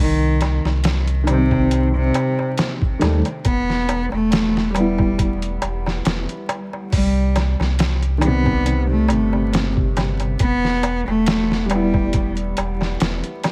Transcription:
0.00 0.60 C2 loud
0.00 0.58 D#3 medium
0.41 snare soft
0.41 closed hi-hat medium
0.41 darbuka tek medium
0.65 2.11 C2 medium
0.65 snare soft
0.65 darbuka tek soft
0.84 snare loud
0.84 closed hi-hat medium
0.84 darbuka tek soft
1.08 closed hi-hat soft
1.24 2.75 D#3 medium
1.24 closed hi-hat medium
1.24 darbuka tek medium
1.28 1.88 C3 medium
1.28 2.77 G3 medium
1.33 2.79 C4 medium
1.51 kick medium
1.51 darbuka tek soft
1.71 closed hi-hat medium
1.71 darbuka tek soft
1.95 2.52 C3 medium
2.14 closed hi-hat medium
2.14 darbuka tek medium
2.39 darbuka tek soft
2.58 snare loud
2.58 closed hi-hat medium
2.58 darbuka tek soft
2.82 kick medium
2.99 3.22 D#2 loud
2.99 3.18 D#3 medium
2.99 3.19 G3 medium
2.99 snare soft
2.99 closed hi-hat medium
2.99 darbuka tek medium
3.04 3.20 A3 medium
3.25 closed hi-hat soft
3.25 darbuka tek medium
3.45 4.08 E1 medium
3.45 4.05 B3 medium
3.45 kick loud
3.45 closed hi-hat medium
3.45 darbuka tek soft
3.70 snare soft
3.89 closed hi-hat medium
3.89 darbuka tek medium
4.12 5.59 E1 medium
4.12 4.70 A3 medium
4.12 darbuka tek soft
4.31 snare loud
4.31 closed hi-hat medium
4.31 darbuka tek soft
4.57 snare soft
4.71 6.88 G3 medium
4.75 5.35 G3 medium
4.75 6.90 B3 medium
4.75 closed hi-hat medium
4.75 darbuka tek medium
4.80 6.93 E4 medium
4.98 kick medium
4.98 darbuka tek soft
5.19 kick loud
5.19 closed hi-hat medium
5.19 darbuka tek soft
5.42 closed hi-hat soft
5.62 6.01 E1 medium
5.62 closed hi-hat medium
5.62 darbuka tek medium
5.86 snare soft
5.86 darbuka tek medium
6.05 6.26 E1 medium
6.05 snare loud
6.05 closed hi-hat medium
6.05 darbuka tek soft
6.29 closed hi-hat soft
6.49 closed hi-hat medium
6.49 darbuka tek medium
6.73 darbuka tek medium
6.92 7.55 C2 loud
6.92 7.53 G3 loud
6.92 kick loud
6.92 open hi-hat medium
6.92 darbuka tek soft
7.36 snare soft
7.36 closed hi-hat medium
7.36 darbuka tek medium
7.60 9.11 C2 medium
7.60 snare soft
7.60 darbuka tek medium
7.79 snare loud
7.79 closed hi-hat medium
7.79 darbuka tek soft
8.02 closed hi-hat soft
8.18 10.36 D#3 medium
8.18 darbuka tek medium
8.22 10.38 G3 medium
8.22 8.83 B3 medium
8.22 closed hi-hat medium
8.27 10.40 C3 medium
8.46 kick medium
8.46 darbuka tek soft
8.66 closed hi-hat medium
8.66 darbuka tek soft
8.90 9.48 A3 medium
9.08 10.36 G1 medium
9.08 closed hi-hat medium
9.08 darbuka tek medium
9.33 darbuka tek medium
9.53 snare loud
9.53 closed hi-hat medium
9.53 darbuka tek soft
9.77 kick medium
9.97 snare soft
9.97 closed hi-hat medium
9.97 darbuka tek medium
10.20 closed hi-hat soft
10.20 darbuka tek soft
10.39 11.03 E1 loud
10.39 11.01 B3 loud
10.39 kick loud
10.39 closed hi-hat medium
10.39 darbuka tek soft
10.65 snare soft
10.83 closed hi-hat medium
10.83 darbuka tek medium
11.07 12.54 E1 medium
11.07 11.65 A3 loud
11.07 darbuka tek soft
11.26 snare loud
11.26 closed hi-hat medium
11.26 darbuka tek soft
11.51 snare soft
11.66 13.52 G3 medium
11.66 closed hi-hat medium
11.70 12.31 G3 medium
11.70 13.52 B3 medium
11.70 darbuka tek medium
11.75 13.52 E4 medium
11.94 kick medium
11.94 darbuka tek soft
12.13 kick loud
12.13 closed hi-hat medium
12.13 darbuka tek soft
12.37 closed hi-hat soft
12.57 12.97 E1 medium
12.57 closed hi-hat medium
12.57 darbuka tek medium
12.81 snare soft
12.81 darbuka tek soft
13.00 13.22 E1 medium
13.00 snare loud
13.00 closed hi-hat medium
13.00 darbuka tek soft
13.24 closed hi-hat soft
13.43 snare soft
13.43 closed hi-hat medium
13.43 darbuka tek medium

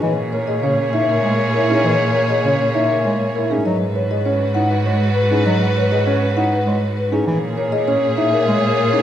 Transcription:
0.02 3.55 A#2 medium
0.02 0.14 E3 medium
0.02 3.46 G#4 medium
0.02 3.46 C#5 medium
0.02 0.22 D#5 medium
0.32 0.53 A#4 medium
0.32 0.53 C#5 medium
0.47 0.68 G#4 medium
0.47 0.68 D#5 medium
0.63 0.74 C#3 medium
0.63 0.83 C#4 medium
0.63 0.83 C#5 medium
0.93 1.13 D#4 medium
0.93 1.13 E5 medium
1.09 1.28 A#4 medium
1.24 1.35 G#3 medium
1.24 1.44 C#5 medium
1.24 1.44 G#5 medium
1.54 1.74 E4 medium
1.54 1.74 A#4 medium
1.69 1.80 C#4 medium
1.69 1.89 D#4 medium
1.69 1.89 G#4 medium
1.84 1.95 E3 medium
1.84 2.04 D#5 medium
2.15 2.34 A#4 medium
2.15 2.34 C#5 medium
2.29 2.49 G#4 medium
2.29 2.49 D#5 medium
2.45 2.56 C#3 medium
2.45 2.64 C#4 medium
2.45 2.64 C#5 medium
2.74 2.94 D#4 medium
2.74 2.94 E5 medium
2.90 3.09 A#4 medium
3.05 3.16 G#3 medium
3.05 3.25 C#5 medium
3.05 3.24 G#5 medium
3.35 3.55 E4 medium
3.35 3.55 A#4 medium
3.51 3.62 C#4 medium
3.51 3.70 D#4 medium
3.51 3.70 G#4 medium
3.65 7.17 G#2 medium
3.65 3.77 F#3 medium
3.65 7.08 F#4 medium
3.65 7.08 B4 medium
3.65 3.85 D#5 medium
3.95 4.15 B4 medium
3.95 4.15 C#5 medium
4.11 4.30 G#4 medium
4.11 4.30 D#5 medium
4.25 4.45 C#4 medium
4.25 4.45 C#5 medium
4.55 4.75 D#4 medium
4.55 4.75 F#5 medium
4.71 4.90 B4 medium
4.85 4.97 G#3 medium
4.85 5.05 C#5 medium
5.16 5.36 B4 medium
5.30 5.42 C#4 medium
5.30 5.51 D#4 medium
5.30 5.50 G#4 medium
5.46 5.57 F#3 medium
5.46 5.65 D#5 medium
5.77 5.96 B4 medium
5.77 5.96 C#5 medium
5.92 6.11 G#4 medium
5.92 6.11 D#5 medium
6.07 6.26 C#4 medium
6.07 6.26 C#5 medium
6.37 6.56 D#4 medium
6.37 6.56 F#5 medium
6.53 6.72 B4 medium
6.66 6.78 G#3 medium
6.66 6.86 C#5 medium
6.97 7.16 B4 medium
7.12 7.23 C#4 medium
7.12 7.32 D#4 medium
7.12 7.32 G#4 medium
7.27 9.02 A#2 medium
7.27 7.38 E3 medium
7.27 9.02 G#4 medium
7.27 9.02 C#5 medium
7.58 7.77 A#4 medium
7.58 7.77 C#5 medium
7.72 7.92 G#4 medium
7.72 7.92 D#5 medium
7.88 8.07 C#4 medium
7.88 8.07 C#5 medium
8.17 8.37 D#4 medium
8.17 8.37 E5 medium
8.33 8.52 A#4 medium
8.47 8.59 G#3 medium
8.78 8.97 A#4 medium
8.93 9.02 C#4 medium
8.93 9.02 D#4 medium
8.93 9.02 G#4 medium

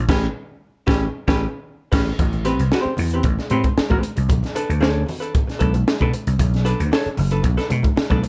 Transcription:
0.08 0.27 A1 loud
0.08 0.27 C#4 medium
0.08 0.27 G4 medium
0.08 0.27 B4 medium
0.08 kick loud
0.08 snare loud
0.08 crash medium
0.87 1.06 A1 loud
0.87 1.05 C#4 loud
0.87 1.05 G4 loud
0.87 1.05 B4 medium
0.87 kick loud
0.87 snare loud
1.28 1.45 A1 loud
1.28 1.45 C#4 loud
1.28 1.45 G4 loud
1.28 1.46 B4 medium
1.28 kick loud
1.28 snare loud
1.92 2.11 A1 loud
1.92 2.11 C#4 medium
1.92 2.10 G4 medium
1.92 2.10 B4 medium
1.92 kick loud
1.92 snare loud
1.92 crash medium
2.19 2.52 A1 loud
2.19 kick loud
2.19 closed hi-hat medium
2.19 muted conga soft
2.19 low conga medium
2.33 closed hi-hat soft
2.33 muted conga soft
2.45 2.60 C4 medium
2.45 2.60 G4 medium
2.45 2.61 B4 loud
2.45 closed hi-hat medium
2.59 2.69 C2 medium
2.59 closed hi-hat soft
2.72 2.92 C4 medium
2.72 2.93 G4 medium
2.72 2.93 C5 medium
2.72 snare medium
2.72 muted conga soft
2.85 muted slap bass stroke soft
2.85 muted conga soft
2.97 3.20 E2 medium
2.97 muted hollow-body jazz guitar stroke soft
2.97 open hi-hat medium
2.97 low conga medium
3.10 3.23 B4 medium
3.10 closed hi-hat medium
3.15 3.24 C4 soft
3.15 3.24 G4 medium
3.23 3.36 A1 medium
3.23 kick loud
3.23 closed hi-hat medium
3.23 muted conga soft
3.39 muted hollow-body jazz guitar stroke soft
3.39 snare soft
3.39 muted conga soft
3.50 3.62 A2 medium
3.50 3.66 C4 medium
3.50 3.64 G4 medium
3.50 3.64 B4 medium
3.50 closed hi-hat medium
3.50 high conga medium
3.64 muted hollow-body jazz guitar stroke soft
3.64 kick medium
3.64 closed hi-hat soft
3.64 high conga medium
3.77 muted hollow-body jazz guitar stroke soft
3.77 muted slap bass stroke soft
3.77 snare loud
3.77 muted conga soft
3.90 4.01 A1 medium
3.90 4.01 C4 medium
3.90 4.02 G4 medium
3.90 4.02 B4 medium
3.90 kick medium
3.90 muted conga soft
3.90 high conga medium
4.03 muted hollow-body jazz guitar stroke soft
4.03 closed hi-hat medium
4.16 4.29 C2 medium
4.16 muted hollow-body jazz guitar stroke soft
4.16 closed hi-hat medium
4.29 4.41 B1 medium
4.29 kick loud
4.29 closed hi-hat loud
4.29 muted conga soft
4.29 low conga medium
4.43 snare soft
4.43 closed hi-hat soft
4.43 muted conga soft
4.55 4.71 D4 medium
4.55 4.71 A4 medium
4.55 4.71 B4 medium
4.55 closed hi-hat medium
4.69 4.80 D2 medium
4.69 closed hi-hat soft
4.80 5.03 D2 medium
4.80 5.01 D4 medium
4.80 5.02 A4 medium
4.80 5.02 C#5 medium
4.80 snare medium
4.80 muted conga soft
4.97 muted conga soft
5.06 muted hollow-body jazz guitar stroke soft
5.06 open hi-hat medium
5.06 low conga medium
5.20 5.32 D4 soft
5.20 5.32 A4 medium
5.20 5.32 B4 medium
5.20 closed hi-hat medium
5.34 kick loud
5.34 closed hi-hat medium
5.34 muted conga soft
5.47 muted hollow-body jazz guitar stroke soft
5.47 snare soft
5.47 closed hi-hat soft
5.59 5.82 B1 medium
5.59 5.75 D4 medium
5.59 5.73 A4 medium
5.59 5.73 B4 medium
5.59 kick medium
5.59 closed hi-hat medium
5.59 high conga medium
5.74 muted hollow-body jazz guitar stroke soft
5.74 closed hi-hat medium
5.74 high conga medium
5.87 muted hollow-body jazz guitar stroke soft
5.87 snare loud
6.00 6.11 B2 medium
6.00 6.12 D4 medium
6.00 6.12 A4 medium
6.00 6.13 B4 medium
6.00 kick medium
6.00 high conga medium
6.13 muted hollow-body jazz guitar stroke soft
6.13 closed hi-hat medium
6.27 6.37 C2 medium
6.27 muted hollow-body jazz guitar stroke soft
6.27 closed hi-hat medium
6.39 6.73 B1 loud
6.39 kick loud
6.39 closed hi-hat medium
6.39 low conga medium
6.54 snare soft
6.54 closed hi-hat soft
6.65 6.81 D4 medium
6.65 6.81 A4 medium
6.65 6.81 B4 loud
6.65 closed hi-hat medium
6.80 6.90 D2 medium
6.80 closed hi-hat medium
6.92 7.07 D4 medium
6.92 7.08 A4 medium
6.92 7.08 C#5 medium
6.92 snare loud
7.06 muted slap bass stroke soft
7.06 closed hi-hat soft
7.17 7.40 F#1 medium
7.17 muted hollow-body jazz guitar stroke soft
7.17 open hi-hat medium
7.17 low conga medium
7.31 7.42 D4 medium
7.31 7.42 A4 medium
7.31 7.43 B4 medium
7.31 closed hi-hat medium
7.43 7.56 B1 loud
7.43 muted hollow-body jazz guitar stroke soft
7.43 kick medium
7.43 closed hi-hat medium
7.43 muted conga soft
7.57 7.68 D4 medium
7.57 7.69 A4 medium
7.57 7.69 B4 medium
7.57 snare soft
7.57 closed hi-hat soft
7.57 muted conga soft
7.69 7.82 B2 medium
7.69 muted hollow-body jazz guitar stroke soft
7.69 closed hi-hat medium
7.69 high conga medium
7.83 muted hollow-body jazz guitar stroke soft
7.83 kick medium
7.83 closed hi-hat medium
7.83 high conga medium
7.96 muted hollow-body jazz guitar stroke soft
7.96 muted slap bass stroke soft
7.96 snare loud
7.96 muted conga soft
8.10 8.21 B1 medium
8.10 8.22 D4 medium
8.10 8.22 A4 medium
8.10 8.22 B4 medium
8.10 kick medium
8.10 closed hi-hat soft
8.10 muted conga soft
8.10 high conga medium
8.23 muted hollow-body jazz guitar stroke soft
8.23 closed hi-hat medium

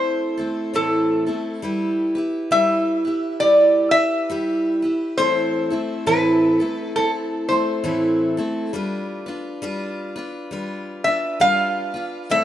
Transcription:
0.00 0.38 A3 soft
0.00 0.38 C4 soft
0.00 0.37 E4 soft
0.00 0.36 A4 soft
0.00 0.78 C5 medium
0.37 0.73 A3 soft
0.37 0.73 C4 soft
0.37 0.74 E4 soft
0.37 0.74 A4 medium
0.73 1.27 A2 medium
0.73 1.27 E3 medium
0.73 1.27 A3 medium
0.73 1.28 C4 medium
0.73 1.26 E4 medium
0.73 1.25 A4 medium
0.73 2.13 A4 medium
1.26 1.62 A3 soft
1.26 1.63 C4 soft
1.26 1.62 E4 soft
1.26 1.63 A4 soft
1.62 2.16 G3 medium
1.62 2.16 E4 medium
1.62 2.15 G4 medium
1.62 2.14 B4 medium
2.15 2.50 E4 soft
2.15 2.51 G4 soft
2.15 2.51 B4 medium
2.51 3.05 G3 medium
2.51 3.05 E4 medium
2.51 3.05 G4 medium
2.51 3.04 B4 medium
2.51 3.43 E5 medium
3.05 3.41 E4 soft
3.05 3.41 G4 soft
3.05 3.41 B4 soft
3.40 3.94 G3 medium
3.40 3.94 E4 soft
3.40 3.94 G4 medium
3.40 3.93 B4 medium
3.40 3.95 D5 medium
3.91 4.30 B4 medium
3.91 5.21 E5 loud
3.95 4.29 E4 soft
3.95 4.30 G4 soft
4.30 4.83 G3 medium
4.30 4.83 E4 medium
4.30 4.83 G4 medium
4.30 4.81 B4 medium
4.82 5.18 E4 soft
4.82 5.19 G4 soft
4.82 5.18 B4 medium
5.18 5.72 A2 medium
5.18 5.72 E3 medium
5.18 5.72 A3 medium
5.18 5.71 C4 medium
5.18 5.70 E4 medium
5.18 5.69 A4 medium
5.18 6.07 C5 medium
5.70 6.06 A3 soft
5.70 6.06 C4 soft
5.70 6.07 E4 medium
5.70 6.07 A4 medium
6.06 6.60 A2 medium
6.06 6.60 E3 medium
6.06 6.60 A3 medium
6.06 6.61 C4 medium
6.06 6.60 E4 medium
6.06 6.59 A4 medium
6.06 6.95 B4 medium
6.60 6.95 A3 soft
6.60 6.95 C4 soft
6.60 6.96 E4 soft
6.60 6.96 A4 medium
6.96 7.49 A3 medium
6.96 7.49 C4 medium
6.96 7.49 E4 medium
6.96 7.10 A4 medium
6.96 7.47 A4 medium
7.48 7.83 A3 soft
7.48 7.84 C4 soft
7.48 7.84 E4 soft
7.48 7.84 A4 medium
7.48 7.82 C5 medium
7.84 8.38 A2 medium
7.84 8.38 E3 medium
7.84 8.38 A3 medium
7.84 8.38 C4 medium
7.84 8.37 E4 medium
7.84 8.36 A4 medium
8.37 8.73 A3 soft
8.37 8.73 C4 medium
8.37 8.74 E4 medium
8.37 8.74 A4 medium
8.73 9.27 G3 medium
8.73 9.27 D4 medium
8.73 9.27 F4 medium
8.73 9.25 B4 medium
9.26 9.62 D4 soft
9.26 9.62 F4 medium
9.26 9.63 B4 medium
9.62 10.16 G3 medium
9.62 10.16 D4 medium
9.62 10.16 F4 medium
9.62 10.14 B4 medium
10.16 10.51 D4 medium
10.16 10.51 F4 medium
10.16 10.52 B4 medium
10.51 11.05 G3 medium
10.51 11.05 D4 medium
10.51 11.05 F4 medium
10.51 11.03 B4 medium
11.04 11.39 D4 soft
11.04 11.40 F4 soft
11.04 11.41 B4 soft
11.04 11.41 E5 medium
11.40 11.94 G3 medium
11.40 11.94 D4 medium
11.40 11.95 F4 medium
11.40 11.93 B4 medium
11.40 12.26 F5 medium
11.94 12.30 D4 soft
11.94 12.31 F4 soft
11.94 12.30 B4 medium
12.30 12.44 A2 medium
12.30 12.44 E3 medium
12.30 12.44 A3 medium
12.30 12.44 C4 medium
12.30 12.44 E4 medium
12.30 12.44 A4 medium
12.30 12.44 E5 loud

